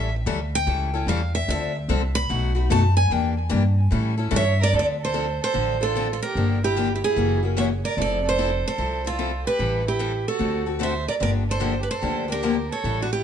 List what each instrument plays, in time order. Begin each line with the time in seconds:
Already playing: upright bass A1, steel-string acoustic guitar E5
0.26 upright bass D2, steel-string acoustic guitar E3 G3 C#4 E4 A4
0.55 steel-string acoustic guitar G5
0.67 upright bass C#2, steel-string acoustic guitar E3 G3 C#4 E4 A4
0.94 steel-string acoustic guitar C#4 E4 A4
1.07 upright bass E2, steel-string acoustic guitar E3 G3 C#4 E4 A4 F5
1.35 steel-string acoustic guitar E5
1.48 upright bass D2, steel-string acoustic guitar D3 F3 C4 D4 A4 E5
1.89 upright bass C2, steel-string acoustic guitar D3 F3 C4 D4 A4
2.15 steel-string acoustic guitar B5
2.29 upright bass B1, steel-string acoustic guitar B2 F#3 A3 D#4 F#4
2.55 steel-string acoustic guitar A3 D#4 F#4
2.70 upright bass F#2, steel-string acoustic guitar B2 F#3 A3 D#4 F#4 A5
2.97 steel-string acoustic guitar G#5
3.10 upright bass E2, steel-string acoustic guitar E3 A#3 D4 G4 G5
3.49 upright bass G2, steel-string acoustic guitar E3 A#3 D4 G4
3.91 upright bass A2, steel-string acoustic guitar E3 G3 C#4 E4 A4
4.18 steel-string acoustic guitar C#4 E4 A4
4.31 upright bass G2, steel-string acoustic guitar E3 G3 C#4 E4 A4, violin C#5
4.36 steel-string acoustic guitar E5
4.61 violin A#4, steel-string acoustic guitar D5
4.73 upright bass D2, steel-string acoustic guitar D3 F3 C4 D4 A4, violin A4
4.79 steel-string acoustic guitar D5
5.00 violin A4
5.05 steel-string acoustic guitar C5
5.14 steel-string acoustic guitar D3 F3 C4 D4 A4
5.41 violin A4, steel-string acoustic guitar C5
5.54 upright bass A1, steel-string acoustic guitar D3 F3 C4 D4 A4
5.81 steel-string acoustic guitar C4 D4 A4, violin F4
5.96 steel-string acoustic guitar D3 F3 C4 D4 A4
6.11 violin F4, steel-string acoustic guitar A4
6.22 violin G4, steel-string acoustic guitar A#4
6.35 upright bass G1, steel-string acoustic guitar D3 F3 A#3 D4 G4
6.63 violin E4, steel-string acoustic guitar G4
6.76 steel-string acoustic guitar D3 F3 A#3 D4 G4
6.93 violin E4, steel-string acoustic guitar G4
7.03 violin E4, steel-string acoustic guitar G#4
7.16 upright bass F#1, steel-string acoustic guitar C#3 E3 A#3 C#4 F#4
7.43 steel-string acoustic guitar A#3 C#4 F#4
7.57 steel-string acoustic guitar C#3 E3 A#3 C#4 F#4 E5, violin C#5
7.84 violin A#4, steel-string acoustic guitar D5
7.97 upright bass F1, steel-string acoustic guitar F3 C4 E4 A4, violin A4
8.02 steel-string acoustic guitar D5
8.24 violin A4
8.29 steel-string acoustic guitar C5
8.38 steel-string acoustic guitar F3 C4 E4 A4
8.66 violin A4, steel-string acoustic guitar C5
8.78 upright bass C2, steel-string acoustic guitar F3 C4 E4 A4
9.04 steel-string acoustic guitar C4 E4 A4, violin F4
9.19 steel-string acoustic guitar F3 C4 E4 A4
9.46 violin G4, steel-string acoustic guitar B4
9.59 upright bass A1, steel-string acoustic guitar E3 G3 C4 E4 A4
9.86 violin E4, steel-string acoustic guitar G4
9.99 steel-string acoustic guitar E3 G3 C4 E4 A4
10.28 violin F#4, steel-string acoustic guitar A4
10.39 upright bass D2, steel-string acoustic guitar D3 A3 C4 F#4 A4
10.66 steel-string acoustic guitar C4 F#4 A4
10.79 steel-string acoustic guitar D3 A3 C4 F#4 A4, violin C5
10.83 steel-string acoustic guitar E5
11.08 violin A#4, steel-string acoustic guitar D5
11.20 upright bass G1, steel-string acoustic guitar D3 F3 A#3 D4 G4 D5, violin A#4
11.49 violin A4, steel-string acoustic guitar C5
11.60 steel-string acoustic guitar D3 F3 A#3 D4 G4
11.80 violin G4, steel-string acoustic guitar B4
11.90 violin A4, steel-string acoustic guitar C5
12.02 upright bass D2, steel-string acoustic guitar D3 F3 A#3 D4 G4
12.28 steel-string acoustic guitar A#3 D4 G4 A#4, violin G4
12.43 steel-string acoustic guitar D3 F3 A#3 D4 G4
12.71 violin A4, steel-string acoustic guitar C#5
12.84 upright bass A1, steel-string acoustic guitar E3 G3 C#4 E4 A4
13.02 violin D4, steel-string acoustic guitar F#4
13.11 violin E4, steel-string acoustic guitar G4